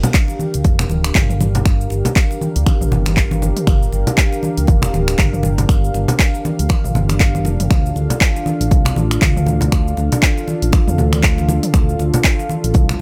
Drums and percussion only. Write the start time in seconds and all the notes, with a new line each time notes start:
0.03 closed hi-hat, low conga, cabasa
0.14 kick, clap, closed hi-hat, cabasa
0.28 muted conga, cabasa
0.39 high conga, cabasa
0.54 closed hi-hat, cabasa
0.64 kick, closed hi-hat, muted conga, high conga, cabasa
0.79 finger snap, low conga, cabasa
0.89 high conga, cabasa
1.04 finger snap, closed hi-hat, muted conga, cabasa
1.15 kick, clap, closed hi-hat, mid tom, cabasa
1.30 mid tom, cabasa
1.41 muted conga, high conga, cabasa
1.55 closed hi-hat, low conga, cabasa
1.66 finger snap, kick, closed hi-hat, cabasa
1.81 cabasa
1.90 muted conga, cabasa
2.05 closed hi-hat, low conga, cabasa
2.16 kick, clap, closed hi-hat, cabasa
2.31 muted conga, cabasa
2.41 high conga, cabasa
2.56 closed hi-hat, cabasa
2.66 finger snap, kick, closed hi-hat, muted conga, high conga, cabasa
2.81 mid tom, cabasa
2.92 high conga, low conga, cabasa
3.06 finger snap, closed hi-hat, muted conga, high conga, cabasa
3.17 kick, clap, closed hi-hat, cabasa
3.31 high conga, cabasa
3.42 muted conga, high conga, cabasa
3.57 closed hi-hat, mid tom, cabasa
3.67 finger snap, kick, closed hi-hat, mid tom, cabasa
3.83 cabasa
3.92 muted conga, cabasa
4.07 closed hi-hat, low conga, cabasa
4.18 kick, clap, closed hi-hat, cabasa
4.32 muted conga, cabasa
4.43 high conga, cabasa
4.57 closed hi-hat, cabasa
4.67 kick, closed hi-hat, muted conga, high conga, cabasa
4.82 finger snap, low conga, cabasa
4.94 high conga, cabasa
5.08 finger snap, closed hi-hat, muted conga, cabasa
5.19 kick, clap, closed hi-hat, mid tom, cabasa
5.33 mid tom, cabasa
5.43 muted conga, high conga, cabasa
5.58 closed hi-hat, low conga, cabasa
5.69 finger snap, kick, closed hi-hat, cabasa
5.84 cabasa
5.94 muted conga, cabasa
6.08 closed hi-hat, low conga, cabasa
6.19 kick, clap, closed hi-hat, cabasa
6.34 muted conga, cabasa
6.45 high conga, cabasa
6.59 closed hi-hat, cabasa
6.69 finger snap, kick, closed hi-hat, muted conga, high conga, cabasa
6.84 mid tom, cabasa
6.95 high conga, low conga, cabasa
7.09 finger snap, closed hi-hat, muted conga, high conga, cabasa
7.20 kick, clap, closed hi-hat, cabasa
7.35 high conga, cabasa
7.45 muted conga, high conga, cabasa
7.60 closed hi-hat, mid tom, cabasa
7.71 finger snap, kick, closed hi-hat, mid tom, cabasa
7.86 cabasa
7.96 muted conga, cabasa
8.10 closed hi-hat, low conga, cabasa
8.21 kick, clap, closed hi-hat, cabasa
8.36 muted conga, cabasa
8.46 high conga, cabasa
8.61 closed hi-hat, cabasa
8.71 kick, closed hi-hat, muted conga, high conga, cabasa
8.85 finger snap, low conga, cabasa
8.96 high conga, cabasa
9.11 finger snap, closed hi-hat, muted conga, cabasa
9.22 kick, clap, closed hi-hat, mid tom, cabasa
9.36 mid tom, cabasa
9.46 muted conga, high conga, cabasa
9.61 closed hi-hat, low conga, cabasa
9.72 finger snap, kick, closed hi-hat, cabasa
9.88 cabasa
9.97 muted conga, cabasa
10.12 closed hi-hat, low conga, cabasa
10.23 kick, clap, closed hi-hat, cabasa
10.37 muted conga, cabasa
10.48 high conga, cabasa
10.62 closed hi-hat, cabasa
10.72 finger snap, kick, closed hi-hat, muted conga, high conga, cabasa
10.88 mid tom, cabasa
10.98 high conga, low conga, cabasa
11.13 finger snap, closed hi-hat, muted conga, high conga, cabasa
11.23 kick, clap, closed hi-hat, cabasa
11.38 high conga, cabasa
11.49 muted conga, high conga, cabasa
11.63 closed hi-hat, mid tom, cabasa
11.74 finger snap, kick, closed hi-hat, mid tom, cabasa
11.89 cabasa
11.99 muted conga, cabasa
12.14 closed hi-hat, low conga, cabasa
12.24 kick, clap, closed hi-hat, cabasa
12.39 muted conga, cabasa
12.49 high conga, cabasa
12.64 closed hi-hat, cabasa
12.74 kick, closed hi-hat, muted conga, high conga, cabasa
12.89 finger snap, low conga, cabasa